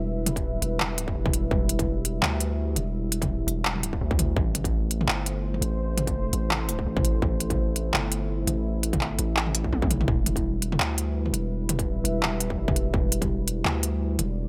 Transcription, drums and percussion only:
0.26 closed hi-hat, mid tom
0.36 kick, closed hi-hat
0.62 closed hi-hat
0.80 clap, mid tom
0.98 closed hi-hat
1.08 kick
1.26 kick, mid tom
1.33 closed hi-hat
1.51 kick
1.69 closed hi-hat
1.79 kick, closed hi-hat, mid tom
2.05 closed hi-hat
2.23 clap, mid tom
2.40 closed hi-hat
2.76 closed hi-hat, mid tom
3.12 closed hi-hat
3.22 kick, closed hi-hat, mid tom
3.48 closed hi-hat
3.65 clap
3.76 mid tom
3.83 closed hi-hat
3.93 kick
4.11 kick
4.19 closed hi-hat, mid tom
4.37 kick
4.55 closed hi-hat, mid tom
4.64 kick, closed hi-hat
4.91 closed hi-hat
5.01 mid tom
5.08 clap
5.26 closed hi-hat
5.54 mid tom
5.62 closed hi-hat
5.98 closed hi-hat, mid tom
6.07 kick, closed hi-hat
6.33 closed hi-hat
6.51 clap, mid tom
6.69 closed hi-hat
6.79 kick
6.97 kick, mid tom
7.05 closed hi-hat
7.22 kick
7.40 closed hi-hat
7.50 kick, closed hi-hat, mid tom
7.76 closed hi-hat
7.94 clap, mid tom
8.12 closed hi-hat
8.47 closed hi-hat, mid tom
8.83 closed hi-hat
8.93 kick, closed hi-hat, mid tom
9.01 clap
9.19 closed hi-hat
9.37 clap
9.47 mid tom
9.55 closed hi-hat
9.64 kick
9.73 high tom
9.82 kick, high tom
9.91 closed hi-hat, mid tom
10.01 mid tom
10.08 kick
10.26 closed hi-hat, mid tom
10.36 kick, closed hi-hat
10.62 closed hi-hat
10.72 mid tom
10.80 clap
10.98 closed hi-hat
11.26 mid tom
11.34 closed hi-hat
11.69 closed hi-hat, mid tom
11.79 kick, closed hi-hat
12.05 closed hi-hat
12.23 clap, mid tom
12.40 closed hi-hat
12.50 kick
12.68 kick, mid tom
12.76 closed hi-hat
12.94 kick
13.12 closed hi-hat
13.22 kick, closed hi-hat, mid tom
13.48 closed hi-hat
13.65 clap, mid tom
13.83 closed hi-hat
14.19 closed hi-hat, mid tom

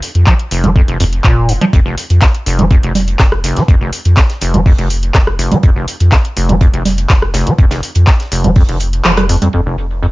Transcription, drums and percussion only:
0.02 open hi-hat
0.15 closed hi-hat
0.26 kick, clap
0.39 closed hi-hat
0.51 open hi-hat
0.64 closed hi-hat, low conga
0.76 kick
0.88 closed hi-hat
1.00 open hi-hat
1.13 closed hi-hat
1.24 kick, clap
1.49 open hi-hat
1.61 closed hi-hat, low conga
1.73 kick, closed hi-hat
1.98 closed hi-hat, open hi-hat
2.10 closed hi-hat
2.21 kick, snare, clap, closed hi-hat
2.34 closed hi-hat
2.46 closed hi-hat, open hi-hat
2.59 closed hi-hat, low conga
2.71 kick, closed hi-hat
2.83 closed hi-hat
2.95 snare, closed hi-hat, open hi-hat, low conga
3.08 closed hi-hat
3.19 kick, cross-stick, snare, clap, closed hi-hat
3.32 cross-stick
3.44 snare, closed hi-hat, open hi-hat
3.57 snare, closed hi-hat
3.68 kick, closed hi-hat
3.93 closed hi-hat, open hi-hat
4.05 closed hi-hat
4.17 kick, snare, clap, closed hi-hat
4.30 snare, closed hi-hat
4.41 snare, closed hi-hat, open hi-hat
4.54 closed hi-hat, low conga
4.66 kick, open hi-hat
4.78 closed hi-hat
4.90 closed hi-hat, open hi-hat
5.03 closed hi-hat
5.14 kick, cross-stick, snare, clap, closed hi-hat
5.27 cross-stick
5.39 closed hi-hat, open hi-hat
5.52 closed hi-hat, low conga
5.63 kick, closed hi-hat
5.88 closed hi-hat, open hi-hat
6.00 closed hi-hat
6.12 kick, snare, clap, closed hi-hat
6.25 closed hi-hat
6.37 open hi-hat
6.49 closed hi-hat, low conga
6.61 kick, closed hi-hat
6.74 closed hi-hat
6.85 snare, closed hi-hat, open hi-hat, low conga
6.98 closed hi-hat
7.09 kick, cross-stick, snare, clap, closed hi-hat
7.22 cross-stick
7.34 snare, closed hi-hat, open hi-hat
7.47 closed hi-hat
7.58 kick, closed hi-hat
7.71 snare, closed hi-hat
7.83 open hi-hat
7.95 closed hi-hat
8.07 kick, snare, clap, closed hi-hat
8.20 snare, closed hi-hat
8.32 snare, closed hi-hat, open hi-hat
8.44 closed hi-hat, low conga
8.56 kick, open hi-hat
8.69 closed hi-hat
8.80 closed hi-hat, open hi-hat
8.93 closed hi-hat
9.04 cross-stick, clap, closed hi-hat
9.17 cross-stick, closed hi-hat, low conga
9.29 open hi-hat
9.42 closed hi-hat, low conga
9.53 closed hi-hat
9.78 closed hi-hat
9.91 closed hi-hat
10.03 closed hi-hat

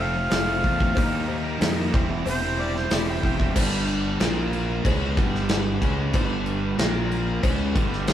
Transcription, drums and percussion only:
0.30 snare, open hi-hat, cowbell
0.64 kick
0.80 kick
0.95 kick, open hi-hat, cowbell
1.28 cowbell
1.61 snare, open hi-hat, cowbell
1.94 kick
2.26 open hi-hat, cowbell
2.58 cowbell
2.76 snare
2.91 snare, open hi-hat, cowbell
3.23 kick
3.40 kick
3.56 kick, crash, cowbell
3.87 crash
4.20 snare, cowbell, crash
4.53 crash
4.85 kick, cowbell, crash
5.17 kick, crash
5.35 snare
5.49 snare, cowbell, crash
5.82 kick, crash
6.13 kick, cowbell, crash
6.46 crash
6.79 snare, cowbell, crash
7.12 crash
7.43 kick, cowbell, crash
7.76 kick, crash
7.93 snare
8.07 snare, cowbell, crash

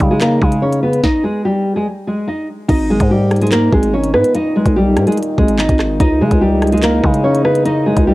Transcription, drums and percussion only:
0.00 kick, closed hi-hat
0.21 clap, closed hi-hat
0.42 kick
0.52 closed hi-hat
0.73 closed hi-hat
0.93 closed hi-hat
1.04 kick, snare
2.69 kick, closed hi-hat, crash
3.00 kick, closed hi-hat
3.31 cross-stick, closed hi-hat
3.36 closed hi-hat
3.42 closed hi-hat
3.47 closed hi-hat
3.52 clap, closed hi-hat
3.72 kick
3.83 closed hi-hat
4.04 closed hi-hat
4.14 cross-stick
4.24 closed hi-hat
4.35 closed hi-hat
4.66 kick, closed hi-hat
4.97 cross-stick, closed hi-hat
5.07 closed hi-hat
5.12 closed hi-hat
5.17 closed hi-hat
5.23 closed hi-hat
5.38 kick
5.48 closed hi-hat
5.59 clap
5.69 kick, closed hi-hat
5.79 cross-stick, clap
6.00 kick, closed hi-hat
6.31 kick, closed hi-hat
6.62 cross-stick, closed hi-hat
6.67 closed hi-hat
6.72 closed hi-hat
6.78 closed hi-hat
6.83 clap, closed hi-hat
7.04 kick
7.14 closed hi-hat
7.35 closed hi-hat
7.45 cross-stick
7.55 closed hi-hat
7.65 closed hi-hat
7.97 kick, closed hi-hat

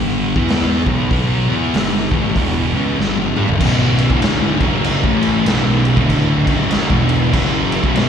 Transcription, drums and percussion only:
0.36 kick
0.48 snare, open hi-hat
0.86 kick
1.11 kick, open hi-hat
1.74 snare, open hi-hat
2.12 kick
2.36 kick, open hi-hat
3.01 snare
3.17 high tom
3.37 mid tom
3.49 floor tom
3.60 kick, crash
3.98 crash
4.10 kick
4.22 snare, crash
4.61 kick, crash
4.84 crash
5.04 kick
5.23 crash
5.46 snare, crash
5.85 crash
5.97 kick
6.09 kick, crash
6.47 kick, crash
6.71 snare, crash
6.90 kick
7.09 crash
7.33 kick, crash
7.72 crash
7.84 kick
7.95 snare, crash

